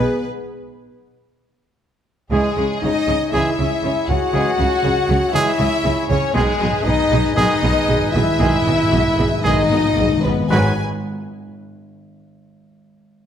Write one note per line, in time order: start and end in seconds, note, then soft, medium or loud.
0.00 0.20 D#3 loud
0.00 0.19 G#3 loud
0.00 0.20 G#3 loud
0.00 0.24 B3 loud
0.00 0.24 D#4 loud
0.00 0.20 G#4 loud
0.00 0.24 G#4 medium
0.00 0.24 B4 loud
0.00 0.24 B4 medium
0.00 0.24 D#5 medium
0.00 0.19 G#5 medium
2.31 2.40 C#2 medium
2.31 2.39 C#3 medium
2.31 2.49 E3 medium
2.31 6.31 G#3 medium
2.31 2.49 G#3 medium
2.31 2.79 G#3 loud
2.31 6.31 G#4 medium
2.31 2.79 G#4 loud
2.31 2.50 G#4 medium
2.31 2.40 G#4 medium
2.31 2.80 G#4 medium
2.31 6.31 C#5 medium
2.31 2.40 C#5 medium
2.31 6.31 G#5 medium
2.56 2.65 C#2 medium
2.56 2.64 C#3 medium
2.56 2.65 G#4 medium
2.56 2.65 C#5 medium
2.82 2.91 C#2 medium
2.82 2.90 C#3 medium
2.82 3.32 D#4 loud
2.82 2.91 G#4 medium
2.82 2.91 C#5 medium
2.82 3.33 D#5 loud
3.07 3.16 C#2 medium
3.07 3.15 C#3 medium
3.07 3.15 G#4 medium
3.07 3.16 C#5 medium
3.32 3.42 C#2 medium
3.32 3.40 C#3 medium
3.32 3.51 E3 medium
3.32 3.51 G#3 medium
3.32 4.09 E4 loud
3.32 3.51 G#4 medium
3.32 3.41 G#4 medium
3.32 3.41 C#5 medium
3.32 4.07 E5 medium
3.32 4.07 E5 loud
3.58 3.67 C#2 medium
3.58 3.66 C#3 medium
3.58 3.66 G#4 medium
3.58 3.67 C#5 medium
3.83 3.91 C#2 medium
3.83 3.91 C#3 medium
3.83 3.92 G#4 medium
3.83 3.92 C#5 medium
4.08 4.16 C#2 medium
4.08 4.17 C#3 medium
4.08 5.35 F#4 loud
4.08 4.18 G#4 medium
4.08 4.18 C#5 medium
4.08 5.34 F#5 loud
4.08 5.32 F#5 loud
4.33 4.42 C#2 medium
4.33 4.41 C#3 medium
4.33 4.51 E3 medium
4.33 4.51 G#3 medium
4.33 4.42 G#4 medium
4.33 4.52 G#4 medium
4.33 4.42 C#5 medium
4.58 4.68 C#2 medium
4.58 4.66 C#3 medium
4.58 4.68 G#4 medium
4.58 4.68 C#5 medium
4.83 4.93 C#2 medium
4.83 4.91 C#3 medium
4.83 4.92 G#4 medium
4.83 4.92 C#5 medium
5.09 5.18 C#2 medium
5.09 5.17 C#3 medium
5.09 5.17 G#4 medium
5.09 5.17 C#5 medium
5.32 5.43 C#2 medium
5.32 5.42 C#3 medium
5.32 5.51 E3 medium
5.32 5.51 G#3 loud
5.32 6.07 E4 loud
5.32 5.42 G#4 medium
5.32 5.52 G#4 loud
5.32 5.42 C#5 medium
5.32 6.09 E5 loud
5.32 6.10 E5 loud
5.58 5.67 C#2 medium
5.58 5.66 C#3 loud
5.58 5.67 G#4 medium
5.58 5.67 C#5 medium
5.84 5.92 C#2 medium
5.84 5.92 C#3 medium
5.84 5.93 G#4 medium
5.84 5.92 C#5 medium
6.08 6.18 C#2 medium
6.08 6.18 C#3 medium
6.08 6.34 C#4 loud
6.08 6.18 G#4 medium
6.08 6.34 C#5 loud
6.08 6.18 C#5 medium
6.33 6.43 B1 loud
6.33 6.41 G#2 soft
6.33 6.42 B2 loud
6.33 6.52 D#3 medium
6.33 6.84 G#3 loud
6.33 6.52 G#3 loud
6.33 10.20 G#3 loud
6.33 6.84 G#4 loud
6.33 6.53 G#4 medium
6.33 10.19 G#4 loud
6.33 6.86 G#4 loud
6.33 6.44 G#4 medium
6.33 10.23 B4 loud
6.33 6.43 D#5 medium
6.33 10.24 G#5 loud
6.42 6.49 G#2 soft
6.50 6.56 G#2 soft
6.57 6.69 B1 loud
6.57 6.63 G#2 soft
6.57 6.68 B2 medium
6.57 6.68 G#4 medium
6.57 6.68 D#5 medium
6.65 6.71 G#2 soft
6.72 6.79 G#2 soft
6.80 6.86 G#2 soft
6.80 7.34 D#4 loud
6.85 6.94 B1 loud
6.85 6.94 G#2 medium
6.85 6.94 B2 loud
6.85 6.94 G#4 medium
6.85 7.34 D#5 loud
6.85 6.93 D#5 medium
6.85 7.35 D#5 loud
6.95 7.01 G#2 soft
7.02 7.08 G#2 soft
7.10 7.20 B1 medium
7.10 7.16 G#2 soft
7.10 7.21 B2 loud
7.10 7.19 G#4 medium
7.10 7.19 D#5 medium
7.17 7.23 G#2 medium
7.25 7.31 G#2 medium
7.32 7.39 G#2 soft
7.32 8.11 D#4 loud
7.32 7.44 G#4 medium
7.32 8.11 D#5 loud
7.32 8.12 D#5 loud
7.32 7.44 D#5 medium
7.37 7.45 B1 loud
7.37 7.46 G#2 medium
7.37 7.45 B2 medium
7.37 7.55 D#3 medium
7.37 7.55 G#3 loud
7.37 7.54 G#4 loud
7.47 7.54 G#2 medium
7.55 7.61 G#2 medium
7.62 7.71 B1 loud
7.62 7.69 G#2 medium
7.62 7.71 B2 loud
7.62 7.70 G#4 medium
7.62 7.70 D#5 medium
7.70 7.76 G#2 medium
7.78 7.85 G#2 medium
7.86 7.96 B1 medium
7.86 7.92 G#2 medium
7.86 7.96 B2 medium
7.86 7.96 G#4 medium
7.86 7.96 D#5 medium
7.93 8.00 G#2 medium
8.01 8.06 G#2 medium
8.08 8.15 G#2 medium
8.13 8.22 B1 loud
8.13 8.22 G#2 medium
8.13 8.22 B2 medium
8.13 9.26 E4 loud
8.13 8.23 G#4 medium
8.13 8.23 D#5 medium
8.13 9.41 E5 loud
8.13 9.44 E5 loud
8.23 8.30 G#2 medium
8.31 8.37 G#2 medium
8.38 8.47 B1 loud
8.38 8.44 G#2 medium
8.38 8.48 B2 loud
8.38 8.58 D#3 loud
8.38 8.58 G#3 loud
8.38 8.57 G#4 medium
8.38 8.48 G#4 medium
8.38 8.48 D#5 medium
8.46 8.53 G#2 medium
8.54 8.60 G#2 medium
8.62 8.67 G#2 medium
8.66 8.74 B1 loud
8.66 8.75 G#2 medium
8.66 8.74 B2 medium
8.66 8.74 G#4 medium
8.66 8.74 D#5 medium
8.77 8.83 G#2 medium
8.84 8.90 G#2 medium
8.91 8.99 B1 loud
8.91 8.97 G#2 medium
8.91 9.00 B2 medium
8.91 9.00 G#4 medium
8.91 9.01 D#5 medium
8.98 9.06 G#2 loud
9.07 9.14 G#2 medium
9.15 9.26 B1 medium
9.15 9.22 G#2 medium
9.15 9.26 B2 medium
9.20 9.30 G#2 medium
9.20 9.28 G#4 medium
9.20 9.28 D#5 medium
9.31 9.37 G#2 medium
9.38 9.46 G#2 medium
9.43 9.53 B1 medium
9.43 9.53 G#2 medium
9.43 9.53 B2 medium
9.43 9.63 D#3 medium
9.43 9.63 G#3 medium
9.43 10.22 D#4 loud
9.43 9.62 G#4 medium
9.43 9.53 G#4 medium
9.43 10.21 D#5 loud
9.43 10.22 D#5 loud
9.43 9.53 D#5 medium
9.54 9.60 G#2 loud
9.61 9.69 G#2 loud
9.70 9.79 B1 medium
9.70 9.77 G#2 loud
9.70 9.79 B2 medium
9.70 9.79 G#4 medium
9.70 9.79 D#5 medium
9.78 9.84 G#2 loud
9.85 9.92 G#2 loud
9.93 10.05 B1 medium
9.93 10.00 G#2 loud
9.97 10.08 G#2 loud
9.97 10.05 B2 medium
9.97 10.06 G#4 medium
9.97 10.06 D#5 medium
10.09 10.16 G#2 loud
10.17 10.24 G#2 loud
10.22 10.32 B1 medium
10.22 10.31 G#2 loud
10.22 10.32 B2 medium
10.22 10.50 B3 loud
10.22 10.33 G#4 medium
10.22 10.50 B4 medium
10.22 10.32 D#5 medium
10.32 10.39 G#2 loud
10.40 10.48 G#2 loud
10.49 10.80 G#1 loud
10.49 10.75 G#2 loud
10.49 10.80 G#2 medium
10.49 10.73 D#3 medium
10.49 10.73 F#3 loud
10.49 10.72 G#3 loud
10.49 10.80 F#4 medium
10.49 10.72 G#4 medium
10.49 10.72 B4 medium
10.49 10.73 B4 medium
10.49 10.80 B4 medium
10.49 10.72 F#5 medium
10.49 10.80 G#5 medium
10.49 10.80 G#5 loud